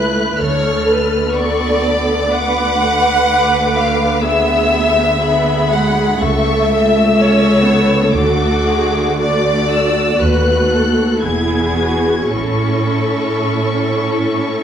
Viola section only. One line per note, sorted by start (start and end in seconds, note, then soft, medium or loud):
0.00 0.39 A3 soft
0.00 0.40 B4 soft
0.40 1.33 A3 soft
0.40 1.35 A4 soft
1.37 2.32 B3 soft
1.37 2.31 A4 soft
2.33 2.79 B3 soft
2.33 4.24 B4 soft
2.80 3.27 A3 soft
3.28 4.22 A3 soft
4.24 5.20 B3 soft
4.24 5.21 G#4 soft
5.22 5.71 B3 soft
5.22 6.19 G#4 soft
5.72 6.21 G#3 soft
6.20 7.18 A3 soft
6.20 7.17 A4 soft
7.19 7.67 C#4 soft
7.19 8.13 A4 soft
7.65 8.14 B3 soft
8.14 10.16 A3 medium
8.14 8.66 A4 soft
8.67 9.21 G#4 soft
9.20 11.19 F#4 soft
10.20 11.21 A3 soft
11.23 12.33 B3 soft
11.23 11.78 E4 soft
11.78 12.34 F#4 soft
12.34 14.63 C#4 soft
12.34 14.63 E4 soft